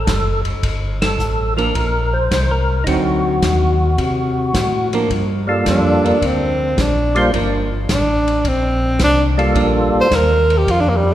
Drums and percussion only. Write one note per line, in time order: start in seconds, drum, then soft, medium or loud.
0.07 kick soft
0.07 snare medium
0.07 hi-hat pedal medium
0.07 ride medium
0.45 ride soft
0.63 kick soft
0.63 ride medium
1.02 snare medium
1.02 ride medium
1.19 hi-hat pedal medium
1.58 ride soft
1.75 kick soft
1.75 ride medium
2.31 kick soft
2.31 snare medium
2.31 hi-hat pedal medium
2.31 ride medium
2.87 kick soft
2.87 ride medium
3.42 kick soft
3.42 snare medium
3.42 hi-hat pedal medium
3.42 ride medium
3.98 kick soft
3.98 ride medium
4.54 kick soft
4.54 snare medium
4.54 hi-hat pedal medium
4.54 ride medium
4.93 ride soft
5.10 kick soft
5.10 ride medium
5.66 kick soft
5.66 snare medium
5.66 hi-hat pedal medium
5.66 ride medium
6.06 ride soft
6.22 kick soft
6.22 ride medium
6.78 kick soft
6.78 snare medium
6.78 hi-hat pedal medium
6.78 ride medium
7.16 ride soft
7.33 kick soft
7.33 ride medium
7.89 kick soft
7.89 snare medium
7.89 hi-hat pedal medium
7.89 ride medium
8.28 ride soft
8.44 kick soft
8.44 ride medium
8.99 kick soft
8.99 snare medium
8.99 hi-hat pedal medium
8.99 ride medium
9.39 ride soft
9.55 kick soft
9.55 ride medium
10.11 kick soft
10.11 snare medium
10.11 hi-hat pedal medium
10.11 ride medium
10.50 ride soft
10.67 kick soft
10.67 ride medium